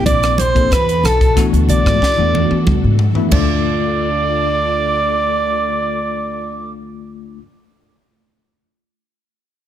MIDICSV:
0, 0, Header, 1, 8, 480
1, 0, Start_track
1, 0, Tempo, 652174
1, 528, Time_signature, 4, 2, 24, 8
1, 7124, End_track
2, 0, Start_track
2, 0, Title_t, "Flute"
2, 0, Program_c, 0, 73
2, 61, Note_on_c, 0, 86, 79
2, 306, Note_on_c, 0, 84, 68
2, 317, Note_off_c, 0, 86, 0
2, 538, Note_on_c, 0, 83, 70
2, 549, Note_off_c, 0, 84, 0
2, 785, Note_on_c, 0, 81, 67
2, 796, Note_off_c, 0, 83, 0
2, 1059, Note_off_c, 0, 81, 0
2, 1259, Note_on_c, 0, 86, 62
2, 1944, Note_off_c, 0, 86, 0
2, 2460, Note_on_c, 0, 86, 65
2, 4934, Note_off_c, 0, 86, 0
2, 7124, End_track
3, 0, Start_track
3, 0, Title_t, "Soprano saxophone"
3, 0, Program_c, 1, 64
3, 43, Note_on_c, 1, 74, 80
3, 288, Note_on_c, 1, 72, 81
3, 299, Note_off_c, 1, 74, 0
3, 533, Note_on_c, 1, 71, 85
3, 544, Note_off_c, 1, 72, 0
3, 776, Note_on_c, 1, 69, 87
3, 787, Note_off_c, 1, 71, 0
3, 1054, Note_off_c, 1, 69, 0
3, 1249, Note_on_c, 1, 74, 86
3, 1939, Note_off_c, 1, 74, 0
3, 2446, Note_on_c, 1, 74, 72
3, 4927, Note_off_c, 1, 74, 0
3, 7124, End_track
4, 0, Start_track
4, 0, Title_t, "String machine"
4, 0, Program_c, 2, 50
4, 0, Note_on_c, 2, 48, 78
4, 0, Note_on_c, 2, 53, 87
4, 0, Note_on_c, 2, 58, 69
4, 0, Note_on_c, 2, 62, 71
4, 499, Note_off_c, 2, 62, 0
4, 501, Note_off_c, 2, 48, 0
4, 502, Note_off_c, 2, 53, 0
4, 503, Note_off_c, 2, 58, 0
4, 516, Note_on_c, 2, 62, 68
4, 517, Note_on_c, 2, 69, 83
4, 518, Note_on_c, 2, 52, 67
4, 522, Note_on_c, 2, 66, 72
4, 2423, Note_off_c, 2, 52, 0
4, 2423, Note_off_c, 2, 62, 0
4, 2423, Note_off_c, 2, 69, 0
4, 2425, Note_off_c, 2, 66, 0
4, 2444, Note_on_c, 2, 62, 57
4, 2449, Note_on_c, 2, 50, 72
4, 2452, Note_on_c, 2, 65, 66
4, 2453, Note_on_c, 2, 69, 80
4, 4925, Note_off_c, 2, 62, 0
4, 4928, Note_off_c, 2, 50, 0
4, 4929, Note_off_c, 2, 65, 0
4, 4930, Note_off_c, 2, 69, 0
4, 7124, End_track
5, 0, Start_track
5, 0, Title_t, "Tine electric piano"
5, 0, Program_c, 3, 4
5, 0, Note_on_c, 3, 53, 76
5, 0, Note_on_c, 3, 58, 65
5, 0, Note_on_c, 3, 60, 73
5, 0, Note_on_c, 3, 62, 63
5, 0, Note_on_c, 3, 64, 80
5, 250, Note_off_c, 3, 53, 0
5, 252, Note_off_c, 3, 58, 0
5, 252, Note_off_c, 3, 60, 0
5, 254, Note_off_c, 3, 62, 0
5, 256, Note_off_c, 3, 64, 0
5, 403, Note_on_c, 3, 53, 63
5, 403, Note_on_c, 3, 58, 59
5, 407, Note_on_c, 3, 60, 65
5, 412, Note_on_c, 3, 62, 60
5, 415, Note_on_c, 3, 69, 70
5, 524, Note_off_c, 3, 53, 0
5, 524, Note_off_c, 3, 58, 0
5, 526, Note_off_c, 3, 60, 0
5, 528, Note_off_c, 3, 62, 0
5, 530, Note_off_c, 3, 69, 0
5, 1001, Note_on_c, 3, 52, 81
5, 1005, Note_on_c, 3, 57, 78
5, 1008, Note_on_c, 3, 59, 76
5, 1011, Note_on_c, 3, 62, 68
5, 1012, Note_on_c, 3, 66, 90
5, 1474, Note_off_c, 3, 52, 0
5, 1476, Note_off_c, 3, 57, 0
5, 1478, Note_off_c, 3, 59, 0
5, 1479, Note_off_c, 3, 62, 0
5, 1480, Note_off_c, 3, 66, 0
5, 1600, Note_on_c, 3, 52, 70
5, 1605, Note_on_c, 3, 57, 65
5, 1610, Note_on_c, 3, 59, 66
5, 1611, Note_on_c, 3, 62, 64
5, 1615, Note_on_c, 3, 66, 78
5, 2167, Note_off_c, 3, 52, 0
5, 2169, Note_off_c, 3, 57, 0
5, 2172, Note_off_c, 3, 59, 0
5, 2172, Note_off_c, 3, 62, 0
5, 2174, Note_off_c, 3, 66, 0
5, 2318, Note_on_c, 3, 52, 79
5, 2319, Note_on_c, 3, 57, 69
5, 2323, Note_on_c, 3, 59, 68
5, 2328, Note_on_c, 3, 62, 66
5, 2330, Note_on_c, 3, 64, 85
5, 2411, Note_off_c, 3, 57, 0
5, 2420, Note_on_c, 3, 57, 74
5, 2436, Note_off_c, 3, 62, 0
5, 2442, Note_off_c, 3, 52, 0
5, 2444, Note_off_c, 3, 59, 0
5, 2445, Note_on_c, 3, 62, 65
5, 2448, Note_off_c, 3, 64, 0
5, 2470, Note_on_c, 3, 65, 79
5, 5429, Note_off_c, 3, 57, 0
5, 5441, Note_off_c, 3, 62, 0
5, 5454, Note_off_c, 3, 65, 0
5, 7124, End_track
6, 0, Start_track
6, 0, Title_t, "Upright bass"
6, 0, Program_c, 4, 32
6, 0, Note_on_c, 4, 34, 77
6, 499, Note_off_c, 4, 34, 0
6, 529, Note_on_c, 4, 40, 80
6, 747, Note_off_c, 4, 40, 0
6, 762, Note_on_c, 4, 35, 82
6, 983, Note_off_c, 4, 35, 0
6, 1125, Note_on_c, 4, 38, 78
6, 1234, Note_off_c, 4, 38, 0
6, 1241, Note_on_c, 4, 35, 80
6, 1356, Note_off_c, 4, 35, 0
6, 1369, Note_on_c, 4, 44, 83
6, 1477, Note_off_c, 4, 44, 0
6, 1607, Note_on_c, 4, 40, 80
6, 1827, Note_off_c, 4, 40, 0
6, 1965, Note_on_c, 4, 40, 82
6, 2078, Note_off_c, 4, 40, 0
6, 2091, Note_on_c, 4, 44, 74
6, 2310, Note_off_c, 4, 44, 0
6, 2439, Note_on_c, 4, 38, 73
6, 5438, Note_off_c, 4, 38, 0
6, 7124, End_track
7, 0, Start_track
7, 0, Title_t, "Muted upright bass strokes"
7, 1848, Note_on_c, 9, 29, 35
7, 1922, Note_off_c, 9, 29, 0
7, 7124, End_track
8, 0, Start_track
8, 0, Title_t, "Drums"
8, 44, Note_on_c, 9, 63, 70
8, 47, Note_on_c, 9, 42, 76
8, 48, Note_on_c, 9, 36, 90
8, 118, Note_off_c, 9, 63, 0
8, 120, Note_off_c, 9, 42, 0
8, 122, Note_off_c, 9, 36, 0
8, 170, Note_on_c, 9, 42, 34
8, 175, Note_on_c, 9, 37, 81
8, 243, Note_off_c, 9, 42, 0
8, 249, Note_off_c, 9, 37, 0
8, 280, Note_on_c, 9, 63, 71
8, 291, Note_on_c, 9, 42, 67
8, 354, Note_off_c, 9, 63, 0
8, 364, Note_off_c, 9, 42, 0
8, 411, Note_on_c, 9, 36, 65
8, 415, Note_on_c, 9, 42, 34
8, 485, Note_off_c, 9, 36, 0
8, 488, Note_off_c, 9, 42, 0
8, 523, Note_on_c, 9, 62, 28
8, 529, Note_on_c, 9, 36, 73
8, 531, Note_on_c, 9, 42, 83
8, 536, Note_on_c, 9, 37, 78
8, 597, Note_off_c, 9, 62, 0
8, 602, Note_off_c, 9, 36, 0
8, 604, Note_off_c, 9, 42, 0
8, 609, Note_off_c, 9, 37, 0
8, 654, Note_on_c, 9, 42, 35
8, 728, Note_off_c, 9, 42, 0
8, 763, Note_on_c, 9, 62, 30
8, 771, Note_on_c, 9, 42, 54
8, 777, Note_on_c, 9, 37, 78
8, 837, Note_off_c, 9, 62, 0
8, 845, Note_off_c, 9, 42, 0
8, 850, Note_off_c, 9, 37, 0
8, 891, Note_on_c, 9, 36, 76
8, 895, Note_on_c, 9, 42, 33
8, 965, Note_off_c, 9, 36, 0
8, 969, Note_off_c, 9, 42, 0
8, 1007, Note_on_c, 9, 42, 60
8, 1008, Note_on_c, 9, 36, 84
8, 1012, Note_on_c, 9, 37, 59
8, 1080, Note_off_c, 9, 42, 0
8, 1081, Note_off_c, 9, 36, 0
8, 1086, Note_off_c, 9, 37, 0
8, 1132, Note_on_c, 9, 42, 33
8, 1205, Note_off_c, 9, 42, 0
8, 1241, Note_on_c, 9, 62, 26
8, 1241, Note_on_c, 9, 64, 60
8, 1247, Note_on_c, 9, 42, 60
8, 1315, Note_off_c, 9, 62, 0
8, 1315, Note_off_c, 9, 64, 0
8, 1321, Note_off_c, 9, 42, 0
8, 1371, Note_on_c, 9, 36, 84
8, 1376, Note_on_c, 9, 37, 89
8, 1444, Note_off_c, 9, 36, 0
8, 1450, Note_off_c, 9, 37, 0
8, 1487, Note_on_c, 9, 36, 74
8, 1488, Note_on_c, 9, 62, 24
8, 1493, Note_on_c, 9, 38, 53
8, 1561, Note_off_c, 9, 36, 0
8, 1561, Note_off_c, 9, 62, 0
8, 1566, Note_off_c, 9, 38, 0
8, 1728, Note_on_c, 9, 48, 70
8, 1729, Note_on_c, 9, 64, 62
8, 1802, Note_off_c, 9, 48, 0
8, 1803, Note_off_c, 9, 64, 0
8, 1846, Note_on_c, 9, 48, 62
8, 1920, Note_off_c, 9, 48, 0
8, 1963, Note_on_c, 9, 63, 69
8, 1966, Note_on_c, 9, 36, 96
8, 1966, Note_on_c, 9, 47, 74
8, 2037, Note_off_c, 9, 63, 0
8, 2039, Note_off_c, 9, 47, 0
8, 2040, Note_off_c, 9, 36, 0
8, 2200, Note_on_c, 9, 43, 90
8, 2274, Note_off_c, 9, 43, 0
8, 2320, Note_on_c, 9, 43, 64
8, 2394, Note_off_c, 9, 43, 0
8, 2438, Note_on_c, 9, 49, 76
8, 2442, Note_on_c, 9, 62, 69
8, 2443, Note_on_c, 9, 36, 92
8, 2512, Note_off_c, 9, 49, 0
8, 2516, Note_off_c, 9, 62, 0
8, 2517, Note_off_c, 9, 36, 0
8, 7124, End_track
0, 0, End_of_file